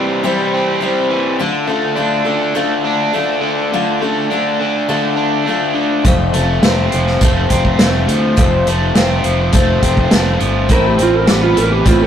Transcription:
Already playing: C3 E3 G3 C4 E4 C5
0.24 C3 E3 G3 C4 E4 C5
0.53 C4
0.81 G3 C4 E4 C5
1.10 E3
1.39 D3 A3 D4 F4 A4
1.67 A3 D4 F4 A4
1.95 A3 D4 F4 A4
2.25 D3 D4 F4 A4
2.55 D3 A3 D4 F4 A4
2.85 D4
3.13 A3 D4 F4 A4
3.41 D3
3.72 D3 A3 D4 F4 A4
4.01 A3 D4 F4 A4
4.30 A3 D4 F4 A4
4.61 D3
4.89 D3 A3 D4 F4 A4
5.17 D4
5.46 A3 D4 F4 A4
5.75 D3
6.04 F1 F2 F3 A3 C4 F4 A4, kick, closed hi-hat
6.34 F1 A3 C4 F4 A4, closed hi-hat
6.63 F1 A3 C4 F4 A4, snare, closed hi-hat
6.92 F1 F3, closed hi-hat
7.06 snare
7.21 F1 F3 A3 C4 F4 A4, kick, closed hi-hat
7.50 F1 C4, kick, closed hi-hat
7.65 kick
7.79 F1 A3 C4 F4 A4, snare, closed hi-hat
8.08 D2 F3, closed hi-hat
8.36 F1 F2 F3 A3 C4 F4 A4, kick, closed hi-hat
8.67 F1 A3 C4 F4 A4, closed hi-hat
8.95 F1 A3 C4 F4 A4, snare, closed hi-hat
9.24 F1 F3, closed hi-hat
9.52 F1 F3 A3 C4 F4 A4, kick, closed hi-hat
9.82 F1 C4, kick, closed hi-hat
9.97 kick
10.11 F1 A3 C4 F4 A4, snare, closed hi-hat
10.40 G1 F3, closed hi-hat
10.69 A1 A2 E3 A3 C4 E4 A#4 B4, kick, closed hi-hat
10.88 G4
10.99 A1 C4 E4 F4 B4, closed hi-hat
11.03 A3
11.14 A#4
11.27 A1 A3 B3 E4 G4 B4, snare, closed hi-hat
11.43 F4
11.56 A1 E3 A#4, closed hi-hat
11.72 G4
11.85 A1 A2 E3 A3 C4 E4 F4 B4, kick, closed hi-hat
12.02 A#4

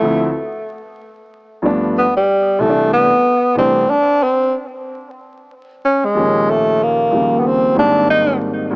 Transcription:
Already playing: A3
0.01 D2 F3 A3 C4 E4
1.62 G2 F3 A3 B3 D4
1.98 B3
2.17 G3
2.59 C2 E3 G3 A3
2.63 C4
2.69 D4
2.93 B3
3.55 C2 E3 G3 A3 C4 D4
3.90 D4
4.23 C4
5.85 C#4
6.05 G#3
6.14 D#2 A#2 F3 C#4 G4
6.50 A3
6.83 A#3
7.11 D#2 C#3 F3 G3 A#3
7.39 B3
7.47 C4
7.75 G#2 D#3 G3 A#3 C4 D4
8.10 D#4
8.71 G#2 D#3

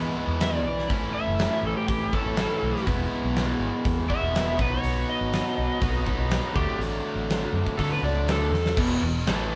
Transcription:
Already playing: E3 G#3 B3 E4
0.15 E3 G#3 B3 E4
0.27 E2
0.40 E5, snare, open hi-hat
0.54 D5
0.64 B1
0.79 snare
0.89 A1 A2 E3 A3 C#4 E4, kick, open hi-hat
1.14 E5
1.27 F#1
1.39 snare, open hi-hat
1.63 A1 A4
1.77 G4
1.88 A1 G4, kick, open hi-hat
2.12 A2 E3 A3 C#4 E4 A4, kick
2.26 A1
2.36 A2 E3 A3 C#4 E4, snare, open hi-hat
2.62 B1
2.76 snare
2.86 E1 E3 G#3 B3 E4, kick, open hi-hat
3.24 B1
3.36 snare, open hi-hat
3.60 G#1
3.85 E2, kick, open hi-hat
4.08 E3 G#3 B3 E4 E5, kick
4.21 E1
4.34 E3 G#3 B3 E4, snare, open hi-hat
4.57 B1 B2 F#3 B3 D#4, kick
4.61 B4
4.72 C#5
4.84 B1, open hi-hat
5.10 D#5
5.21 G#1
5.33 snare, open hi-hat
5.58 B1
5.80 B1 B2 F#3 B3 D#4, kick, open hi-hat
6.04 B2 F#3 B3 D#4, kick
6.18 B1
6.31 snare, open hi-hat
6.53 D2 D3 F#3 A3 D4 G4, kick
6.79 A1, open hi-hat
7.15 A1
7.30 snare, open hi-hat
7.53 F#2
7.67 kick
7.77 D3 F#3 A3 D4 A4, kick, open hi-hat
7.92 B4
8.02 C#2 F#3 A3 D4 D5
8.06 D3
8.26 D2, snare, open hi-hat
8.31 A4
8.51 E2, snare
8.66 snare
8.77 E1 E2 B2 E3, kick, crash
9.01 E1 E2 B2
9.27 A1 A2 E3 A3, snare, crash

